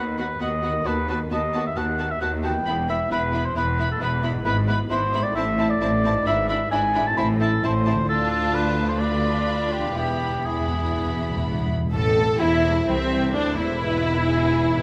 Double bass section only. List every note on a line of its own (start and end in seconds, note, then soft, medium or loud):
0.00 0.35 D#2 soft
0.40 0.81 D#2 soft
0.85 1.26 D#2 medium
1.30 1.71 D#2 soft
1.77 2.17 D#2 medium
2.21 2.62 D#2 medium
2.67 3.07 E1 medium
3.11 3.51 E1 medium
3.56 3.96 E1 medium
4.01 4.41 E1 medium
4.46 4.85 G#1 medium
4.91 5.31 G#1 medium
5.36 5.76 A1 medium
5.82 6.22 A1 medium
6.27 6.67 G#1 medium
6.72 7.12 G#1 medium
7.18 7.58 A1 medium
7.64 8.04 A1 medium
8.09 9.92 D2 medium
9.96 11.68 E1 soft
11.92 12.37 A1 medium
12.40 12.87 E1 medium
12.88 13.34 C2 medium
13.35 13.58 D2 medium
13.58 14.82 E1 medium